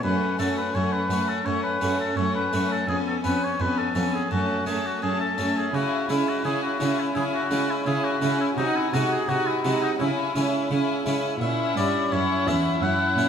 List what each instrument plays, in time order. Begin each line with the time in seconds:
0.03 harpsichord F#2, cello section F#2, viola section A3, violin section C#4 F#5, oboe B4
0.39 harpsichord F#2 A3 C#4 F#4, cello section F#2, viola section A3, violin section C#4 F#5, oboe A4
0.58 oboe B4
0.75 cello section F#2, harpsichord F#2, viola section A3, violin section C#4 F#5, oboe C#5
0.92 oboe B4
1.10 cello section F#2, harpsichord F#2 A3 C#4 F#4, viola section A3, violin section C#4 F#5
1.29 oboe A4
1.46 cello section F#2, harpsichord F#2, viola section A3, violin section C#4 F#5, oboe C#5
1.64 oboe B4
1.81 harpsichord F#2 A3 C#4 F#4, cello section F#2, viola section A3, violin section C#4 F#5
2.00 oboe A4
2.17 cello section F#2, harpsichord F#2, viola section A3, violin section C#4 F#5, oboe C#5
2.35 oboe B4
2.53 harpsichord F#2 A3 C#4 F#4, cello section F#2, viola section A3, violin section C#4 F#5
2.72 oboe A4
2.89 cello section F2, harpsichord F2, viola section B3, violin section C#4 G#5, oboe G#4
3.07 oboe A4
3.24 harpsichord F2 B3 C#4, cello section F2, viola section B3, violin section C#4 G#5, oboe B4
3.44 oboe C#5
3.60 harpsichord F2, cello section F2, viola section B3, violin section C#4 G#5, oboe B4
3.78 oboe A4
3.95 harpsichord F2 B3 C#4, cello section F2, viola section B3, violin section C#4 G#5
4.15 oboe G#4
4.31 harpsichord F#2, cello section F#2, viola section A3, violin section C#4 A5, oboe F#4
4.66 harpsichord F#2 A3 C#4, cello section F#2, viola section A3, violin section C#4 A5, oboe G#4
4.86 oboe F#4
5.02 cello section F#2, harpsichord F#2, viola section A3, violin section C#4 A5, oboe G#4
5.21 oboe A4
5.38 cello section F#2, harpsichord F#2 A3 C#4, viola section A3, violin section C#4 A5
5.57 oboe G#4
5.74 cello section C#3, harpsichord C#3, viola section C#4, violin section E4 G#5, oboe F#4
6.09 cello section C#3, harpsichord C#3 G#3 C#4 E4, viola section C#4, oboe E4, violin section E4 G#5
6.28 oboe F#4
6.45 harpsichord C#3, cello section C#3, viola section C#4, violin section E4 G#5, oboe G#4
6.63 oboe F#4
6.80 cello section C#3, harpsichord C#3 G#3 C#4 E4, viola section C#4, violin section E4 G#5
6.99 oboe E4
7.15 cello section C#3, harpsichord C#3, viola section C#4, violin section E4 G#5, oboe G#4
7.34 oboe F#4
7.51 cello section C#3, harpsichord C#3 G#3 C#4 E4, viola section C#4, violin section E4 G#5
7.70 oboe E4
7.86 cello section C#3, harpsichord C#3, viola section C#4, violin section E4 G#5, oboe G#4
8.04 oboe F#4
8.22 harpsichord C#3 G#3 C#4 E4, cello section C#3, viola section C#4, violin section E4 G#5
8.41 oboe E4
8.57 cello section C3, harpsichord C3, viola section D#4, oboe D#4, violin section F#4 G#5
8.76 oboe E4
8.93 cello section C3, harpsichord C3 G#3 D#4 F#4, viola section D#4, oboe F#4, violin section F#4 G#5
9.12 oboe G#4
9.29 cello section C3, harpsichord C3, viola section D#4, oboe F#4, violin section F#4 G#5
9.46 oboe E4
9.64 cello section C3, harpsichord C3 G#3 D#4 F#4, viola section D#4, violin section F#4 G#5
9.83 oboe D#4
10.00 cello section C#3, harpsichord C#3, viola section C#4, oboe E4, violin section E4 G#5
10.35 cello section C#3, harpsichord C#3 G#3 C#4 E4, viola section C#4, violin section E4 G#5
10.71 cello section C#3, harpsichord C#3, viola section C#4, violin section E4 G#5
11.06 harpsichord C#3 G#3 C#4 E4, cello section C#3, viola section C#4, violin section E4 G#5
11.41 cello section A#2, harpsichord A#2, viola section C#4, violin section E4 F#5, oboe E5
11.77 cello section G2, harpsichord G2 C#4 E4, oboe D5
12.12 cello section F#2, harpsichord F#2, viola section C#4, violin section E4 F#5, oboe C#5
12.48 harpsichord E2 C#4 E4, cello section E2, oboe E5
12.83 harpsichord F#2, cello section F#2, viola section C#4, violin section E4 F#5, oboe F#5
13.18 cello section A#2, harpsichord A#2 C#4 E4